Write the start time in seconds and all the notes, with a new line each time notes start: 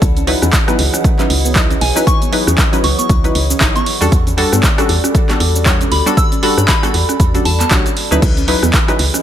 Already playing: E4 F#5
0.02 C#2 E3 F#3 G#4 B4 D#5, kick, closed hi-hat, shaker
0.14 C#4 C#5, closed hi-hat, shaker
0.26 F#3 D#4 E4 B4 B5, open hi-hat
0.42 E2 C#4, cross-stick, closed hi-hat, shaker
0.53 kick, clap, closed hi-hat, shaker
0.67 F#3 B3 D#4 E4 B4, cross-stick, closed hi-hat, shaker
0.79 C#2, open hi-hat
0.94 C#4, cross-stick, closed hi-hat, shaker
1.04 kick, closed hi-hat, shaker
1.19 F#3 C#4 D#4 E4 B4, clap, closed hi-hat, shaker
1.30 C#2, open hi-hat
1.45 B3, shaker
1.55 F#3 D#4 E4 D#5, kick, clap, closed hi-hat, shaker
1.71 C#4, closed hi-hat, shaker
1.81 B1 G#5, open hi-hat
1.96 F#3 C#4 D#4 E4 B4, shaker
2.07 D#5 C#6, kick, closed hi-hat, shaker
2.22 B3, closed hi-hat, shaker
2.32 F#3 D#4 E4 B4, open hi-hat
2.47 E2 C#4, cross-stick, closed hi-hat, shaker
2.58 kick, clap, closed hi-hat, shaker
2.73 F#3 C#4 D#4 E4 B4, closed hi-hat, shaker
2.84 C#2 C#6, open hi-hat
2.99 B3 C#6, closed hi-hat, shaker
3.09 C#2, kick, closed hi-hat, shaker
3.24 F#3 C#4 D#4 E4 B4, closed hi-hat, shaker
3.35 C#2, open hi-hat
3.50 C#4, shaker
3.60 G#1 F#3 D#4 E4 D#5, kick, clap, closed hi-hat, shaker
3.76 B3 C#6, closed hi-hat, shaker
3.86 G3 F#4 A4 D5, open hi-hat
4.01 E2 G3 C#4 D4 F#4 A4, shaker
4.06 D5
4.12 E2, kick, closed hi-hat, shaker
4.27 C#4, closed hi-hat, shaker
4.37 G3 D4 F#4 A4, open hi-hat
4.52 G2 B3, cross-stick, closed hi-hat, shaker
4.63 kick, clap, closed hi-hat, shaker
4.78 G3 C#4 D4 F#4 A4, cross-stick, closed hi-hat, shaker
4.89 E2, open hi-hat
5.04 C#4, cross-stick, closed hi-hat, shaker
5.15 kick, closed hi-hat, shaker
5.29 G3 B3 D4 F#4 A4, clap, closed hi-hat, shaker
5.40 E2, open hi-hat
5.55 C#4, shaker
5.66 G3 D4 F#4 C#5, kick, clap, closed hi-hat, shaker
5.81 C#4, closed hi-hat, shaker
5.92 D2 B5, open hi-hat
6.06 G3 B3 D4 F#4 A4, shaker
6.17 E6, kick, closed hi-hat, shaker
6.32 C#4, closed hi-hat, shaker
6.42 G3 D4 F#4 A4 B5, open hi-hat
6.58 G2 C#4, cross-stick, closed hi-hat, shaker
6.68 B5, kick, clap, closed hi-hat, shaker
6.83 G3 B3 D4 F#4 A4, cross-stick, closed hi-hat, shaker
6.94 E2, open hi-hat
7.09 C#4, cross-stick, closed hi-hat, shaker
7.20 E2, kick, closed hi-hat, shaker
7.34 G3 C#4 D4 F#4 A4, closed hi-hat, shaker
7.45 E2 A5, open hi-hat
7.60 B3 A5, clap, closed hi-hat, shaker
7.71 B1 G3 D4 F#4 C#5, kick, clap, closed hi-hat, shaker
7.86 C#4, closed hi-hat, shaker
7.97 open hi-hat
8.11 D2 F#3 C#4 D#4 E4 B4, shaker
8.22 C#2 E3 F#3 G#4 B4 D#5, kick, closed hi-hat, crash, shaker
8.37 C#4, closed hi-hat, shaker
8.47 F#3 D#4 E4 B4 C#5, open hi-hat
8.63 E2 B3 F#5, cross-stick, closed hi-hat, shaker
8.74 kick, clap, closed hi-hat, shaker
8.88 F#3 C#4 D#4 E4 B4, cross-stick, closed hi-hat, shaker
8.99 C#2, open hi-hat
9.14 C#4, cross-stick, closed hi-hat, shaker